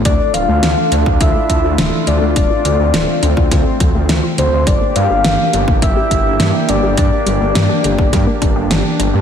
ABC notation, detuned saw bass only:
X:1
M:4/4
L:1/16
Q:1/4=104
K:Dm
V:1 name="Detuned saw bass" clef=bass
D,, z D,,, D,, D,, z D,, D,, D,, z D,, D,, D,,, z D,, D,, | D,,, z D,, D,, D,,, z D,, D,, D,, z D,, D,, D,, z D,, D,, | G,,, z G,, G,,, G,,, z G,,, G,,, G,,, z G,,, G,,, G,, z G,,, G,,, | G,, z G,,, G,,, G,, z G,,, G,,, G,, z G,,, G,,, G,,, z G,,, G,, |]